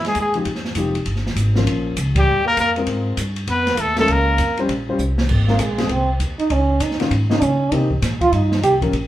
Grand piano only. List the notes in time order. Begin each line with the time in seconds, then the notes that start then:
0.35 F3 G#3 D#4 G4
0.77 F3 G#3 D#4 G4
1.56 F3 A#3 C#4 F4
2.77 G#3 C4 F4 A#4
3.98 G#3 C#4 F4 A#4
4.59 G3 C#4 F4 C5
4.89 G3 C#4 F4 C5
5.48 G#3 C4 F4 A#4
5.78 G#3 C4 F4 G#4
7.00 D#3 B3 C#4 F4
7.30 D#3 B3 C#4 F4
7.72 D#3 A#3 C4 G4
8.82 F3 A#3 C#4 A#4